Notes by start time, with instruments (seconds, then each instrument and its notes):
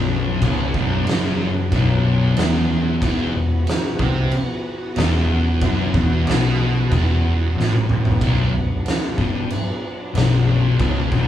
Already playing: picked electric bass B0, distorted electric guitar B1, string machine F#3 B3 D4
0.41 picked electric bass C#1, distorted electric guitar C#2, kick, crash
0.74 picked electric bass B0, distorted electric guitar B1, kick
1.06 picked electric bass F#1, distorted electric guitar F#2, snare, crash
1.72 picked electric bass B0, distorted electric guitar B1, kick, crash
2.36 picked electric bass E1, distorted electric guitar E2, snare, crash
3.01 picked electric bass E1, distorted electric guitar E2, string machine E3 F#4, kick, crash
3.34 picked electric bass E1, distorted electric guitar E2
3.67 snare, crash
3.99 picked electric bass C2, distorted electric guitar C3, kick
4.31 crash
4.96 picked electric bass E1, distorted electric guitar E2, snare, crash
5.61 picked electric bass F#1, distorted electric guitar F#2, kick, crash
5.93 picked electric bass E1, distorted electric guitar E2, kick
6.25 picked electric bass B1, distorted electric guitar B2, crash
6.30 snare
6.91 picked electric bass E1, distorted electric guitar E2, kick, crash
7.55 picked electric bass A1, distorted electric guitar A2
7.60 snare
7.73 high tom
7.89 mid tom
8.05 floor tom
8.21 picked electric bass B0, distorted electric guitar B1, string machine F#3 D4, kick, crash
8.53 picked electric bass B0, distorted electric guitar B1
8.86 snare, crash
9.18 picked electric bass G1, distorted electric guitar G2, kick
9.50 crash
10.14 picked electric bass B0, distorted electric guitar B1, crash
10.18 snare
10.79 picked electric bass C#1, distorted electric guitar C#2, kick, crash
10.83 string machine A3
11.12 picked electric bass B0, distorted electric guitar B1, kick